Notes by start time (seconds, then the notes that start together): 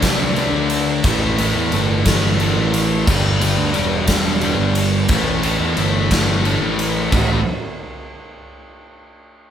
Already playing: C2
0.02 D3 A3 D4, kick, snare, ride
0.36 D3 A3 D4, ride
0.52 D2
0.70 ride
1.04 A1 A2 E3 A3, kick, ride
1.38 A2 E3 A3, ride
1.54 E2
1.72 G1 A2 E3 A3, ride
2.06 A2 E3 A3, kick, snare, ride
2.40 A2 E3 A3, ride
2.56 A1
2.74 ride
3.07 G1 G2 D3 G3, kick, crash
3.41 G2 D3 G3, ride
3.57 D2
3.73 E1 G2 D3 G3, ride
4.07 G2 D3 G3, kick, snare, ride
4.41 G2 D3 G3, ride
4.58 G1
4.75 ride
5.08 A1 A2 E3 A3, kick, ride
5.43 A2 E3 A3, ride
5.60 E2
5.76 G1 A2 E3 A3, ride
6.11 A2 E3 A3, kick, snare, ride
6.45 A2 E3 A3, ride
6.61 A1
6.79 ride
7.12 A1 A2 E3 A3, kick, floor tom, crash